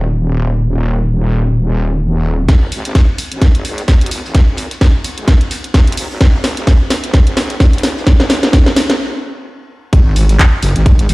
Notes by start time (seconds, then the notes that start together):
Already playing: D#1
2.48 G#1, kick, snare, closed hi-hat, ride
2.72 open hi-hat, ride
2.85 G#1, snare, closed hi-hat
2.95 kick, snare, closed hi-hat, ride
3.18 open hi-hat, ride
3.32 G#1, closed hi-hat
3.42 kick, snare, closed hi-hat, ride
3.55 G#1, closed hi-hat
3.65 G#1, open hi-hat, ride
3.78 snare, closed hi-hat
3.88 kick, snare, closed hi-hat, ride
4.01 B1, closed hi-hat
4.06 closed hi-hat
4.11 G#1, snare, open hi-hat, ride
4.25 G#1, snare
4.34 kick, snare, closed hi-hat, ride
4.57 open hi-hat, ride
4.71 snare, closed hi-hat
4.81 kick, snare, closed hi-hat, ride
5.04 open hi-hat, ride
5.18 G#1, closed hi-hat, ride
5.28 kick, snare, closed hi-hat, ride
5.41 closed hi-hat
5.51 snare, open hi-hat, ride
5.64 closed hi-hat
5.74 kick, snare, closed hi-hat, ride
5.87 B1, closed hi-hat, ride
5.92 closed hi-hat
5.97 G#1, open hi-hat
6.10 G#1, snare
6.21 G#1, kick, snare, closed hi-hat, ride
6.44 snare, open hi-hat, ride
6.57 G#1, snare, closed hi-hat
6.67 kick, snare, closed hi-hat, ride
6.90 snare, open hi-hat, ride
7.04 G#1, closed hi-hat
7.13 kick, snare, closed hi-hat, ride
7.27 G#1, closed hi-hat
7.37 G#1, snare, open hi-hat, ride
7.50 snare, closed hi-hat
7.60 kick, snare, closed hi-hat, ride
7.73 B1, closed hi-hat
7.78 closed hi-hat
7.83 G#1, snare, open hi-hat, ride
7.97 G#1, snare
8.07 kick, snare, closed hi-hat, ride
8.20 snare
8.30 snare, open hi-hat, ride
8.43 G#1, snare, closed hi-hat
8.53 kick, snare, closed hi-hat, ride
8.66 snare
8.76 snare, open hi-hat, ride
8.90 snare, closed hi-hat
9.93 G#1, kick, closed hi-hat, ride
10.16 open hi-hat, ride
10.29 snare, closed hi-hat
10.39 kick, snare, clap, closed hi-hat, ride
10.62 F#1, open hi-hat, ride
10.76 G#1, closed hi-hat
10.86 G#1, kick, closed hi-hat, ride
10.99 closed hi-hat
11.09 G#1, open hi-hat, ride